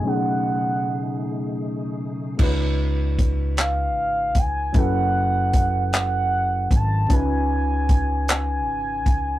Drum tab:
CC |------|x-----|------|------|
HH |------|--xx-x|x-xx-x|x-xx-x|
CP |------|---x--|---x--|---x--|
BD |------|o-o--o|o-o--o|o-o--o|